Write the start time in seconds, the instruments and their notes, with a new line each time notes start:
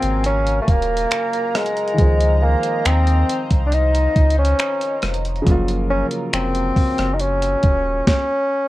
Already playing: grand piano C#3 F#3 G#3 A#3 F4, bassoon C4, analog synth pad A#4 F5 G#5 A#5
0.02 sub bass G#1, closed hi-hat
0.24 bassoon C#4, closed hi-hat
0.47 closed hi-hat
0.62 bassoon A3
0.68 sub bass D#1, bassoon A#3, kick, closed hi-hat
0.83 closed hi-hat
0.97 closed hi-hat
1.11 finger snap, closed hi-hat
1.33 closed hi-hat
1.55 bassoon G#3, cross-stick, closed hi-hat
1.66 closed hi-hat
1.77 closed hi-hat
1.88 closed hi-hat
1.94 grand piano D#3 F3
1.99 sub bass C#2, grand piano G#3 C5, analog synth pad C5 D#5, kick, closed hi-hat
2.04 grand piano D#4
2.21 closed hi-hat
2.42 bassoon A#3, celesta G#5
2.63 closed hi-hat
2.85 sub bass D#2, bassoon C4, finger snap, closed hi-hat
3.07 closed hi-hat
3.29 closed hi-hat
3.50 sub bass C2, kick, closed hi-hat
3.66 bassoon D4
3.72 bassoon D#4, closed hi-hat
3.95 closed hi-hat
4.16 sub bass C#2, kick, closed hi-hat
4.30 closed hi-hat
4.38 bassoon C#4
4.45 closed hi-hat
4.59 finger snap, closed hi-hat
4.81 closed hi-hat
5.02 sub bass F1, cross-stick, closed hi-hat, open hi-hat
5.14 closed hi-hat
5.25 closed hi-hat
5.35 closed hi-hat
5.42 grand piano C#3 F3
5.46 sub bass F#1, grand piano F#3 A#3, analog synth pad A#4, kick, closed hi-hat
5.51 grand piano F4
5.68 closed hi-hat
5.91 bassoon C#4
6.11 closed hi-hat
6.33 sub bass F1, bassoon C4, finger snap, closed hi-hat
6.55 closed hi-hat
6.76 kick, open hi-hat
6.98 sub bass F#1, cross-stick, closed hi-hat
7.14 bassoon D#4
7.20 bassoon C#4, closed hi-hat
7.42 closed hi-hat
7.63 sub bass D#1, kick, closed hi-hat
8.07 bassoon C#4, celesta C#5, kick, snare